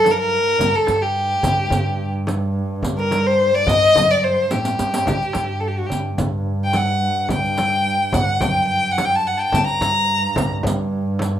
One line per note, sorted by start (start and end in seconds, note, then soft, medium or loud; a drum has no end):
0.00 0.38 F#2 medium
0.00 0.61 G2 medium
0.00 0.13 A4 medium
0.05 riq soft
0.05 darbuka tek medium
0.05 frame drum medium
0.11 0.19 A#4 medium
0.20 0.77 A#4 loud
0.46 darbuka ka soft
0.59 0.71 G2 medium
0.59 5.05 G2 medium
0.59 riq medium
0.59 darbuka dum medium
0.59 frame drum medium
0.74 1.04 A4 medium
0.74 riq soft
0.87 1.33 G2 medium
0.87 riq soft
0.87 darbuka tek medium
0.87 frame drum medium
1.02 2.12 G4 medium
1.43 1.66 G2 medium
1.43 riq medium
1.43 frame drum medium
1.43 darbuka dum medium
1.70 2.60 G2 medium
1.70 riq medium
1.70 frame drum medium
1.70 darbuka dum medium
1.86 darbuka ka soft
1.99 darbuka ka soft
2.27 riq soft
2.27 darbuka tek medium
2.27 frame drum medium
2.57 darbuka ka soft
2.71 darbuka ka soft
2.82 3.50 G3 medium
2.82 riq medium
2.82 frame drum medium
2.82 darbuka dum medium
2.98 3.28 A#4 medium
2.98 riq soft
3.11 riq soft
3.11 darbuka tek medium
3.11 frame drum medium
3.27 3.56 C5 medium
3.54 3.70 D5 medium
3.54 riq soft
3.54 darbuka ka soft
3.67 3.90 G2 medium
3.67 4.12 D#5 loud
3.67 riq medium
3.67 frame drum loud
3.95 4.40 F#2 medium
3.95 riq medium
3.95 darbuka dum medium
3.95 frame drum medium
4.10 4.25 D5 medium
4.10 riq soft
4.10 darbuka ka soft
4.24 4.53 C5 medium
4.51 4.77 A2 medium
4.51 5.61 G4 medium
4.51 riq medium
4.51 darbuka tek medium
4.51 frame drum medium
4.65 riq medium
4.65 darbuka ka soft
4.79 5.05 G2 medium
4.79 riq medium
4.93 riq medium
4.93 darbuka ka soft
5.06 9.53 G2 medium
5.06 5.19 G2 medium
5.06 riq medium
5.06 darbuka dum medium
5.06 frame drum loud
5.22 riq soft
5.33 5.80 G2 medium
5.33 riq medium
5.33 darbuka tek medium
5.33 frame drum medium
5.60 5.69 A4 medium
5.68 5.80 G4 medium
5.79 5.88 F#4 medium
5.86 5.95 G4 medium
5.86 darbuka dum medium
5.91 6.13 G2 medium
5.91 riq medium
6.18 7.07 G2 medium
6.18 riq medium
6.18 frame drum medium
6.18 darbuka dum medium
6.47 darbuka ka soft
6.64 6.77 G5 medium
6.73 7.31 F#5 medium
6.73 riq soft
6.73 darbuka tek medium
6.73 frame drum medium
7.04 darbuka ka soft
7.17 darbuka ka soft
7.29 7.97 G3 medium
7.29 8.16 G5 medium
7.29 riq medium
7.29 frame drum medium
7.29 darbuka dum medium
7.45 riq soft
7.58 riq soft
7.58 darbuka tek medium
7.58 frame drum medium
8.13 8.36 G2 medium
8.13 8.42 F#5 medium
8.13 riq medium
8.13 frame drum loud
8.13 darbuka dum medium
8.41 9.31 F#2 medium
8.41 8.68 G5 medium
8.41 riq medium
8.41 frame drum medium
8.41 darbuka dum medium
8.58 darbuka ka soft
8.68 8.93 G5 medium
8.92 9.07 F#5 medium
8.98 riq medium
8.98 darbuka tek medium
8.98 frame drum medium
9.05 9.17 G5 medium
9.15 9.29 A5 medium
9.27 9.36 F#5 medium
9.27 darbuka ka soft
9.37 9.52 G5 medium
9.37 9.41 A5 medium
9.51 9.64 G2 medium
9.51 11.40 G2 medium
9.51 9.66 A5 medium
9.51 frame drum loud
9.51 darbuka dum medium
9.55 riq medium
9.67 10.50 A#5 loud
9.67 riq soft
9.81 10.25 G2 medium
9.81 riq medium
9.81 darbuka tek medium
9.81 frame drum medium
10.36 10.59 G2 medium
10.36 riq medium
10.36 frame drum loud
10.36 darbuka dum loud
10.63 11.40 G2 loud
10.63 riq medium
10.63 frame drum medium
10.63 darbuka dum loud
10.79 darbuka ka soft
10.92 darbuka ka soft
11.19 riq medium
11.19 darbuka tek medium
11.19 frame drum medium